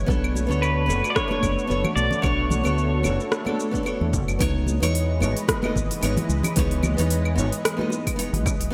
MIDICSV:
0, 0, Header, 1, 6, 480
1, 0, Start_track
1, 0, Tempo, 540541
1, 66, Time_signature, 4, 2, 24, 8
1, 7760, End_track
2, 0, Start_track
2, 0, Title_t, "Pedal steel guitar"
2, 0, Program_c, 0, 26
2, 551, Note_on_c, 0, 71, 86
2, 979, Note_on_c, 0, 74, 75
2, 985, Note_off_c, 0, 71, 0
2, 1019, Note_off_c, 0, 74, 0
2, 1023, Note_on_c, 0, 73, 98
2, 1733, Note_off_c, 0, 73, 0
2, 1736, Note_on_c, 0, 74, 108
2, 1970, Note_off_c, 0, 74, 0
2, 1974, Note_on_c, 0, 73, 97
2, 3384, Note_off_c, 0, 73, 0
2, 7760, End_track
3, 0, Start_track
3, 0, Title_t, "Analog synth pad"
3, 0, Program_c, 1, 89
3, 0, Note_on_c, 1, 71, 67
3, 0, Note_on_c, 1, 73, 86
3, 69, Note_on_c, 1, 57, 78
3, 69, Note_on_c, 1, 66, 71
3, 70, Note_on_c, 1, 62, 74
3, 1957, Note_off_c, 1, 71, 0
3, 1987, Note_on_c, 1, 69, 77
3, 3870, Note_off_c, 1, 73, 0
3, 3872, Note_off_c, 1, 57, 0
3, 3872, Note_off_c, 1, 62, 0
3, 3872, Note_off_c, 1, 66, 0
3, 3887, Note_off_c, 1, 69, 0
3, 3920, Note_on_c, 1, 75, 74
3, 3921, Note_on_c, 1, 71, 75
3, 3922, Note_on_c, 1, 52, 76
3, 3924, Note_on_c, 1, 56, 83
3, 7718, Note_off_c, 1, 52, 0
3, 7718, Note_off_c, 1, 71, 0
3, 7718, Note_off_c, 1, 75, 0
3, 7719, Note_off_c, 1, 56, 0
3, 7760, End_track
4, 0, Start_track
4, 0, Title_t, "Nylon-string guitar"
4, 0, Program_c, 2, 24
4, 57, Note_on_c, 2, 59, 92
4, 66, Note_on_c, 2, 62, 88
4, 80, Note_on_c, 2, 69, 84
4, 88, Note_on_c, 2, 73, 102
4, 402, Note_off_c, 2, 59, 0
4, 407, Note_off_c, 2, 62, 0
4, 413, Note_off_c, 2, 69, 0
4, 415, Note_on_c, 2, 59, 85
4, 418, Note_off_c, 2, 73, 0
4, 429, Note_on_c, 2, 62, 81
4, 439, Note_on_c, 2, 69, 72
4, 449, Note_on_c, 2, 73, 93
4, 749, Note_off_c, 2, 59, 0
4, 756, Note_off_c, 2, 62, 0
4, 760, Note_off_c, 2, 69, 0
4, 763, Note_on_c, 2, 59, 81
4, 765, Note_off_c, 2, 73, 0
4, 773, Note_on_c, 2, 62, 72
4, 786, Note_on_c, 2, 69, 75
4, 792, Note_on_c, 2, 73, 86
4, 884, Note_off_c, 2, 59, 0
4, 889, Note_off_c, 2, 62, 0
4, 895, Note_off_c, 2, 69, 0
4, 898, Note_off_c, 2, 73, 0
4, 1135, Note_on_c, 2, 59, 76
4, 1147, Note_on_c, 2, 62, 66
4, 1159, Note_on_c, 2, 69, 69
4, 1169, Note_on_c, 2, 73, 83
4, 1468, Note_off_c, 2, 59, 0
4, 1474, Note_off_c, 2, 62, 0
4, 1480, Note_off_c, 2, 69, 0
4, 1485, Note_off_c, 2, 73, 0
4, 1486, Note_on_c, 2, 59, 80
4, 1495, Note_on_c, 2, 62, 75
4, 1507, Note_on_c, 2, 69, 74
4, 1519, Note_on_c, 2, 73, 92
4, 1605, Note_off_c, 2, 59, 0
4, 1610, Note_off_c, 2, 62, 0
4, 1616, Note_off_c, 2, 69, 0
4, 1622, Note_off_c, 2, 73, 0
4, 1972, Note_on_c, 2, 59, 93
4, 1978, Note_on_c, 2, 62, 84
4, 1990, Note_on_c, 2, 69, 87
4, 2006, Note_on_c, 2, 73, 100
4, 2319, Note_off_c, 2, 59, 0
4, 2323, Note_off_c, 2, 62, 0
4, 2329, Note_off_c, 2, 69, 0
4, 2336, Note_off_c, 2, 73, 0
4, 2340, Note_on_c, 2, 59, 85
4, 2347, Note_on_c, 2, 62, 82
4, 2363, Note_on_c, 2, 69, 75
4, 2370, Note_on_c, 2, 73, 94
4, 2671, Note_off_c, 2, 59, 0
4, 2674, Note_off_c, 2, 62, 0
4, 2682, Note_off_c, 2, 69, 0
4, 2686, Note_off_c, 2, 73, 0
4, 2691, Note_on_c, 2, 59, 81
4, 2702, Note_on_c, 2, 62, 69
4, 2710, Note_on_c, 2, 69, 75
4, 2719, Note_on_c, 2, 73, 87
4, 2808, Note_off_c, 2, 59, 0
4, 2813, Note_off_c, 2, 62, 0
4, 2817, Note_off_c, 2, 69, 0
4, 2822, Note_off_c, 2, 73, 0
4, 3061, Note_on_c, 2, 59, 70
4, 3070, Note_on_c, 2, 62, 68
4, 3078, Note_on_c, 2, 69, 67
4, 3091, Note_on_c, 2, 74, 79
4, 3283, Note_off_c, 2, 59, 0
4, 3288, Note_off_c, 2, 62, 0
4, 3292, Note_off_c, 2, 69, 0
4, 3297, Note_on_c, 2, 59, 80
4, 3298, Note_off_c, 2, 74, 0
4, 3307, Note_on_c, 2, 62, 73
4, 3318, Note_on_c, 2, 69, 72
4, 3329, Note_on_c, 2, 74, 86
4, 3390, Note_off_c, 2, 59, 0
4, 3395, Note_off_c, 2, 62, 0
4, 3400, Note_off_c, 2, 69, 0
4, 3401, Note_on_c, 2, 59, 79
4, 3405, Note_off_c, 2, 74, 0
4, 3414, Note_on_c, 2, 62, 74
4, 3426, Note_on_c, 2, 69, 75
4, 3439, Note_on_c, 2, 73, 91
4, 3868, Note_off_c, 2, 59, 0
4, 3874, Note_off_c, 2, 62, 0
4, 3880, Note_off_c, 2, 69, 0
4, 3886, Note_off_c, 2, 73, 0
4, 3897, Note_on_c, 2, 59, 94
4, 3908, Note_on_c, 2, 63, 89
4, 3920, Note_on_c, 2, 64, 85
4, 3923, Note_off_c, 2, 64, 0
4, 3926, Note_on_c, 2, 73, 105
4, 4242, Note_off_c, 2, 59, 0
4, 4247, Note_off_c, 2, 63, 0
4, 4256, Note_off_c, 2, 73, 0
4, 4266, Note_on_c, 2, 59, 85
4, 4279, Note_on_c, 2, 63, 77
4, 4286, Note_on_c, 2, 64, 77
4, 4291, Note_off_c, 2, 64, 0
4, 4294, Note_on_c, 2, 73, 92
4, 4594, Note_off_c, 2, 59, 0
4, 4600, Note_off_c, 2, 63, 0
4, 4608, Note_off_c, 2, 73, 0
4, 4620, Note_on_c, 2, 59, 82
4, 4628, Note_on_c, 2, 63, 74
4, 4639, Note_on_c, 2, 64, 76
4, 4645, Note_off_c, 2, 64, 0
4, 4648, Note_on_c, 2, 73, 89
4, 4732, Note_off_c, 2, 59, 0
4, 4736, Note_off_c, 2, 63, 0
4, 4747, Note_off_c, 2, 73, 0
4, 4990, Note_on_c, 2, 59, 76
4, 5001, Note_on_c, 2, 63, 67
4, 5009, Note_on_c, 2, 64, 68
4, 5016, Note_off_c, 2, 64, 0
4, 5020, Note_on_c, 2, 75, 83
4, 5316, Note_off_c, 2, 59, 0
4, 5322, Note_off_c, 2, 63, 0
4, 5331, Note_off_c, 2, 75, 0
4, 5338, Note_on_c, 2, 59, 88
4, 5348, Note_on_c, 2, 63, 76
4, 5363, Note_on_c, 2, 64, 75
4, 5368, Note_off_c, 2, 64, 0
4, 5372, Note_on_c, 2, 73, 90
4, 5451, Note_off_c, 2, 59, 0
4, 5456, Note_off_c, 2, 63, 0
4, 5468, Note_off_c, 2, 73, 0
4, 5824, Note_on_c, 2, 59, 93
4, 5834, Note_on_c, 2, 63, 86
4, 5843, Note_on_c, 2, 64, 82
4, 5854, Note_off_c, 2, 64, 0
4, 5857, Note_on_c, 2, 73, 100
4, 6165, Note_off_c, 2, 59, 0
4, 6171, Note_off_c, 2, 63, 0
4, 6182, Note_off_c, 2, 73, 0
4, 6188, Note_on_c, 2, 59, 86
4, 6197, Note_on_c, 2, 63, 77
4, 6205, Note_on_c, 2, 64, 84
4, 6215, Note_off_c, 2, 64, 0
4, 6219, Note_on_c, 2, 73, 94
4, 6515, Note_off_c, 2, 59, 0
4, 6520, Note_off_c, 2, 63, 0
4, 6530, Note_off_c, 2, 73, 0
4, 6531, Note_on_c, 2, 59, 83
4, 6541, Note_on_c, 2, 63, 73
4, 6554, Note_on_c, 2, 64, 75
4, 6561, Note_off_c, 2, 64, 0
4, 6565, Note_on_c, 2, 73, 85
4, 6648, Note_off_c, 2, 59, 0
4, 6653, Note_off_c, 2, 63, 0
4, 6665, Note_off_c, 2, 73, 0
4, 6896, Note_on_c, 2, 59, 76
4, 6908, Note_on_c, 2, 63, 69
4, 6922, Note_on_c, 2, 64, 64
4, 6931, Note_off_c, 2, 64, 0
4, 6934, Note_on_c, 2, 75, 84
4, 7229, Note_off_c, 2, 59, 0
4, 7235, Note_off_c, 2, 63, 0
4, 7245, Note_on_c, 2, 59, 87
4, 7248, Note_off_c, 2, 75, 0
4, 7257, Note_on_c, 2, 63, 71
4, 7269, Note_on_c, 2, 64, 78
4, 7274, Note_off_c, 2, 64, 0
4, 7278, Note_on_c, 2, 73, 91
4, 7365, Note_off_c, 2, 59, 0
4, 7371, Note_off_c, 2, 63, 0
4, 7381, Note_off_c, 2, 73, 0
4, 7729, Note_on_c, 2, 59, 99
4, 7760, Note_off_c, 2, 59, 0
4, 7760, End_track
5, 0, Start_track
5, 0, Title_t, "Fingered electric bass"
5, 0, Program_c, 3, 33
5, 72, Note_on_c, 3, 35, 95
5, 407, Note_off_c, 3, 35, 0
5, 434, Note_on_c, 3, 38, 86
5, 785, Note_on_c, 3, 30, 84
5, 798, Note_off_c, 3, 38, 0
5, 896, Note_off_c, 3, 30, 0
5, 1269, Note_on_c, 3, 30, 79
5, 1378, Note_off_c, 3, 30, 0
5, 1509, Note_on_c, 3, 30, 89
5, 1618, Note_off_c, 3, 30, 0
5, 1742, Note_on_c, 3, 35, 89
5, 1855, Note_off_c, 3, 35, 0
5, 1985, Note_on_c, 3, 35, 92
5, 2323, Note_off_c, 3, 35, 0
5, 2359, Note_on_c, 3, 38, 87
5, 2706, Note_on_c, 3, 30, 81
5, 2720, Note_off_c, 3, 38, 0
5, 2817, Note_off_c, 3, 30, 0
5, 3561, Note_on_c, 3, 40, 75
5, 3669, Note_on_c, 3, 30, 100
5, 3683, Note_off_c, 3, 40, 0
5, 3778, Note_off_c, 3, 30, 0
5, 3799, Note_on_c, 3, 30, 83
5, 3889, Note_off_c, 3, 30, 0
5, 3911, Note_on_c, 3, 37, 93
5, 4246, Note_off_c, 3, 37, 0
5, 4282, Note_on_c, 3, 40, 90
5, 4628, Note_on_c, 3, 32, 77
5, 4642, Note_off_c, 3, 40, 0
5, 4738, Note_off_c, 3, 32, 0
5, 5112, Note_on_c, 3, 32, 77
5, 5219, Note_off_c, 3, 32, 0
5, 5354, Note_on_c, 3, 32, 94
5, 5460, Note_off_c, 3, 32, 0
5, 5586, Note_on_c, 3, 37, 94
5, 5696, Note_off_c, 3, 37, 0
5, 5835, Note_on_c, 3, 37, 91
5, 6168, Note_off_c, 3, 37, 0
5, 6204, Note_on_c, 3, 40, 92
5, 6550, Note_on_c, 3, 32, 83
5, 6563, Note_off_c, 3, 40, 0
5, 6658, Note_off_c, 3, 32, 0
5, 7396, Note_on_c, 3, 32, 95
5, 7509, Note_off_c, 3, 32, 0
5, 7509, Note_on_c, 3, 37, 86
5, 7618, Note_off_c, 3, 37, 0
5, 7634, Note_on_c, 3, 35, 82
5, 7726, Note_off_c, 3, 35, 0
5, 7760, End_track
6, 0, Start_track
6, 0, Title_t, "Drums"
6, 72, Note_on_c, 9, 36, 102
6, 94, Note_on_c, 9, 82, 30
6, 161, Note_off_c, 9, 36, 0
6, 183, Note_off_c, 9, 82, 0
6, 215, Note_on_c, 9, 75, 80
6, 304, Note_off_c, 9, 75, 0
6, 313, Note_on_c, 9, 63, 75
6, 324, Note_on_c, 9, 82, 70
6, 402, Note_off_c, 9, 63, 0
6, 413, Note_off_c, 9, 82, 0
6, 459, Note_on_c, 9, 82, 43
6, 548, Note_off_c, 9, 82, 0
6, 558, Note_on_c, 9, 75, 75
6, 566, Note_on_c, 9, 82, 28
6, 647, Note_off_c, 9, 75, 0
6, 654, Note_off_c, 9, 82, 0
6, 800, Note_on_c, 9, 82, 70
6, 889, Note_off_c, 9, 82, 0
6, 926, Note_on_c, 9, 75, 79
6, 933, Note_on_c, 9, 82, 40
6, 1015, Note_off_c, 9, 75, 0
6, 1022, Note_off_c, 9, 82, 0
6, 1029, Note_on_c, 9, 37, 79
6, 1030, Note_on_c, 9, 36, 96
6, 1037, Note_on_c, 9, 82, 31
6, 1118, Note_off_c, 9, 37, 0
6, 1119, Note_off_c, 9, 36, 0
6, 1125, Note_off_c, 9, 82, 0
6, 1162, Note_on_c, 9, 63, 81
6, 1251, Note_off_c, 9, 63, 0
6, 1267, Note_on_c, 9, 36, 57
6, 1268, Note_on_c, 9, 75, 76
6, 1275, Note_on_c, 9, 82, 62
6, 1356, Note_off_c, 9, 36, 0
6, 1357, Note_off_c, 9, 75, 0
6, 1364, Note_off_c, 9, 82, 0
6, 1408, Note_on_c, 9, 82, 41
6, 1497, Note_off_c, 9, 82, 0
6, 1516, Note_on_c, 9, 82, 32
6, 1605, Note_off_c, 9, 82, 0
6, 1633, Note_on_c, 9, 63, 59
6, 1636, Note_on_c, 9, 64, 79
6, 1639, Note_on_c, 9, 75, 83
6, 1722, Note_off_c, 9, 63, 0
6, 1725, Note_off_c, 9, 64, 0
6, 1728, Note_off_c, 9, 75, 0
6, 1750, Note_on_c, 9, 82, 74
6, 1839, Note_off_c, 9, 82, 0
6, 1870, Note_on_c, 9, 64, 81
6, 1885, Note_on_c, 9, 82, 42
6, 1958, Note_off_c, 9, 64, 0
6, 1974, Note_off_c, 9, 82, 0
6, 1983, Note_on_c, 9, 75, 78
6, 1986, Note_on_c, 9, 36, 104
6, 1991, Note_on_c, 9, 82, 31
6, 2072, Note_off_c, 9, 75, 0
6, 2075, Note_off_c, 9, 36, 0
6, 2079, Note_off_c, 9, 82, 0
6, 2223, Note_on_c, 9, 64, 78
6, 2225, Note_on_c, 9, 63, 83
6, 2233, Note_on_c, 9, 82, 74
6, 2312, Note_off_c, 9, 64, 0
6, 2314, Note_off_c, 9, 63, 0
6, 2322, Note_off_c, 9, 82, 0
6, 2353, Note_on_c, 9, 75, 76
6, 2361, Note_on_c, 9, 82, 44
6, 2442, Note_off_c, 9, 75, 0
6, 2449, Note_off_c, 9, 82, 0
6, 2470, Note_on_c, 9, 82, 30
6, 2559, Note_off_c, 9, 82, 0
6, 2701, Note_on_c, 9, 75, 82
6, 2708, Note_on_c, 9, 82, 70
6, 2789, Note_off_c, 9, 75, 0
6, 2797, Note_off_c, 9, 82, 0
6, 2844, Note_on_c, 9, 82, 39
6, 2933, Note_off_c, 9, 82, 0
6, 2946, Note_on_c, 9, 37, 73
6, 2953, Note_on_c, 9, 82, 31
6, 3035, Note_off_c, 9, 37, 0
6, 3042, Note_off_c, 9, 82, 0
6, 3075, Note_on_c, 9, 63, 81
6, 3078, Note_on_c, 9, 75, 77
6, 3164, Note_off_c, 9, 63, 0
6, 3167, Note_off_c, 9, 75, 0
6, 3195, Note_on_c, 9, 82, 66
6, 3284, Note_off_c, 9, 82, 0
6, 3320, Note_on_c, 9, 36, 53
6, 3330, Note_on_c, 9, 82, 41
6, 3408, Note_off_c, 9, 36, 0
6, 3418, Note_off_c, 9, 82, 0
6, 3429, Note_on_c, 9, 75, 79
6, 3436, Note_on_c, 9, 82, 31
6, 3518, Note_off_c, 9, 75, 0
6, 3525, Note_off_c, 9, 82, 0
6, 3563, Note_on_c, 9, 63, 62
6, 3651, Note_off_c, 9, 63, 0
6, 3670, Note_on_c, 9, 36, 91
6, 3673, Note_on_c, 9, 82, 71
6, 3758, Note_off_c, 9, 36, 0
6, 3762, Note_off_c, 9, 82, 0
6, 3803, Note_on_c, 9, 75, 76
6, 3810, Note_on_c, 9, 82, 42
6, 3892, Note_off_c, 9, 75, 0
6, 3899, Note_off_c, 9, 82, 0
6, 3912, Note_on_c, 9, 36, 113
6, 3912, Note_on_c, 9, 46, 59
6, 3912, Note_on_c, 9, 75, 79
6, 3919, Note_on_c, 9, 82, 34
6, 4000, Note_off_c, 9, 36, 0
6, 4001, Note_off_c, 9, 46, 0
6, 4001, Note_off_c, 9, 75, 0
6, 4008, Note_off_c, 9, 82, 0
6, 4144, Note_on_c, 9, 63, 81
6, 4155, Note_on_c, 9, 82, 76
6, 4233, Note_off_c, 9, 63, 0
6, 4244, Note_off_c, 9, 82, 0
6, 4286, Note_on_c, 9, 46, 47
6, 4286, Note_on_c, 9, 75, 81
6, 4294, Note_on_c, 9, 82, 46
6, 4375, Note_off_c, 9, 46, 0
6, 4375, Note_off_c, 9, 75, 0
6, 4382, Note_off_c, 9, 82, 0
6, 4396, Note_on_c, 9, 46, 57
6, 4403, Note_on_c, 9, 82, 33
6, 4484, Note_off_c, 9, 46, 0
6, 4492, Note_off_c, 9, 82, 0
6, 4634, Note_on_c, 9, 75, 76
6, 4641, Note_on_c, 9, 82, 78
6, 4723, Note_off_c, 9, 75, 0
6, 4730, Note_off_c, 9, 82, 0
6, 4765, Note_on_c, 9, 46, 45
6, 4772, Note_on_c, 9, 82, 47
6, 4854, Note_off_c, 9, 46, 0
6, 4861, Note_off_c, 9, 82, 0
6, 4864, Note_on_c, 9, 60, 52
6, 4871, Note_on_c, 9, 36, 102
6, 4872, Note_on_c, 9, 37, 85
6, 4872, Note_on_c, 9, 46, 55
6, 4880, Note_on_c, 9, 82, 34
6, 4953, Note_off_c, 9, 60, 0
6, 4960, Note_off_c, 9, 36, 0
6, 4961, Note_off_c, 9, 37, 0
6, 4961, Note_off_c, 9, 46, 0
6, 4968, Note_off_c, 9, 82, 0
6, 4997, Note_on_c, 9, 63, 86
6, 5006, Note_on_c, 9, 75, 78
6, 5086, Note_off_c, 9, 63, 0
6, 5095, Note_off_c, 9, 75, 0
6, 5112, Note_on_c, 9, 36, 60
6, 5123, Note_on_c, 9, 82, 76
6, 5201, Note_off_c, 9, 36, 0
6, 5212, Note_off_c, 9, 82, 0
6, 5247, Note_on_c, 9, 46, 47
6, 5248, Note_on_c, 9, 60, 40
6, 5254, Note_on_c, 9, 82, 45
6, 5336, Note_off_c, 9, 46, 0
6, 5337, Note_off_c, 9, 60, 0
6, 5343, Note_off_c, 9, 82, 0
6, 5351, Note_on_c, 9, 46, 59
6, 5351, Note_on_c, 9, 75, 73
6, 5358, Note_on_c, 9, 82, 34
6, 5440, Note_off_c, 9, 46, 0
6, 5440, Note_off_c, 9, 75, 0
6, 5447, Note_off_c, 9, 82, 0
6, 5475, Note_on_c, 9, 63, 68
6, 5476, Note_on_c, 9, 64, 93
6, 5477, Note_on_c, 9, 60, 36
6, 5482, Note_on_c, 9, 46, 33
6, 5563, Note_off_c, 9, 63, 0
6, 5565, Note_off_c, 9, 64, 0
6, 5566, Note_off_c, 9, 60, 0
6, 5571, Note_off_c, 9, 46, 0
6, 5592, Note_on_c, 9, 82, 80
6, 5681, Note_off_c, 9, 82, 0
6, 5711, Note_on_c, 9, 60, 45
6, 5714, Note_on_c, 9, 64, 96
6, 5722, Note_on_c, 9, 46, 48
6, 5722, Note_on_c, 9, 75, 79
6, 5729, Note_on_c, 9, 82, 46
6, 5800, Note_off_c, 9, 60, 0
6, 5803, Note_off_c, 9, 64, 0
6, 5811, Note_off_c, 9, 46, 0
6, 5811, Note_off_c, 9, 75, 0
6, 5818, Note_off_c, 9, 82, 0
6, 5824, Note_on_c, 9, 46, 61
6, 5832, Note_on_c, 9, 82, 35
6, 5833, Note_on_c, 9, 36, 115
6, 5913, Note_off_c, 9, 46, 0
6, 5920, Note_off_c, 9, 82, 0
6, 5922, Note_off_c, 9, 36, 0
6, 5960, Note_on_c, 9, 46, 29
6, 6049, Note_off_c, 9, 46, 0
6, 6062, Note_on_c, 9, 60, 64
6, 6066, Note_on_c, 9, 63, 100
6, 6067, Note_on_c, 9, 75, 76
6, 6069, Note_on_c, 9, 64, 91
6, 6074, Note_on_c, 9, 82, 79
6, 6151, Note_off_c, 9, 60, 0
6, 6154, Note_off_c, 9, 63, 0
6, 6156, Note_off_c, 9, 75, 0
6, 6158, Note_off_c, 9, 64, 0
6, 6163, Note_off_c, 9, 82, 0
6, 6201, Note_on_c, 9, 46, 45
6, 6208, Note_on_c, 9, 82, 48
6, 6290, Note_off_c, 9, 46, 0
6, 6297, Note_off_c, 9, 82, 0
6, 6308, Note_on_c, 9, 46, 57
6, 6316, Note_on_c, 9, 82, 32
6, 6397, Note_off_c, 9, 46, 0
6, 6404, Note_off_c, 9, 82, 0
6, 6441, Note_on_c, 9, 75, 69
6, 6530, Note_off_c, 9, 75, 0
6, 6555, Note_on_c, 9, 82, 88
6, 6643, Note_off_c, 9, 82, 0
6, 6682, Note_on_c, 9, 46, 46
6, 6689, Note_on_c, 9, 82, 45
6, 6770, Note_off_c, 9, 46, 0
6, 6778, Note_off_c, 9, 82, 0
6, 6795, Note_on_c, 9, 37, 81
6, 6795, Note_on_c, 9, 46, 56
6, 6795, Note_on_c, 9, 75, 74
6, 6802, Note_on_c, 9, 82, 35
6, 6884, Note_off_c, 9, 37, 0
6, 6884, Note_off_c, 9, 46, 0
6, 6884, Note_off_c, 9, 75, 0
6, 6891, Note_off_c, 9, 82, 0
6, 6917, Note_on_c, 9, 63, 90
6, 7006, Note_off_c, 9, 63, 0
6, 7016, Note_on_c, 9, 60, 57
6, 7035, Note_on_c, 9, 82, 74
6, 7104, Note_off_c, 9, 60, 0
6, 7124, Note_off_c, 9, 82, 0
6, 7164, Note_on_c, 9, 36, 65
6, 7166, Note_on_c, 9, 46, 46
6, 7166, Note_on_c, 9, 75, 75
6, 7173, Note_on_c, 9, 82, 44
6, 7253, Note_off_c, 9, 36, 0
6, 7254, Note_off_c, 9, 46, 0
6, 7254, Note_off_c, 9, 75, 0
6, 7262, Note_off_c, 9, 82, 0
6, 7272, Note_on_c, 9, 46, 57
6, 7279, Note_on_c, 9, 82, 34
6, 7361, Note_off_c, 9, 46, 0
6, 7368, Note_off_c, 9, 82, 0
6, 7402, Note_on_c, 9, 63, 69
6, 7405, Note_on_c, 9, 46, 32
6, 7491, Note_off_c, 9, 63, 0
6, 7493, Note_off_c, 9, 46, 0
6, 7511, Note_on_c, 9, 36, 109
6, 7512, Note_on_c, 9, 75, 73
6, 7519, Note_on_c, 9, 82, 87
6, 7600, Note_off_c, 9, 36, 0
6, 7601, Note_off_c, 9, 75, 0
6, 7608, Note_off_c, 9, 82, 0
6, 7643, Note_on_c, 9, 46, 44
6, 7650, Note_on_c, 9, 82, 46
6, 7731, Note_off_c, 9, 46, 0
6, 7739, Note_off_c, 9, 82, 0
6, 7760, End_track
0, 0, End_of_file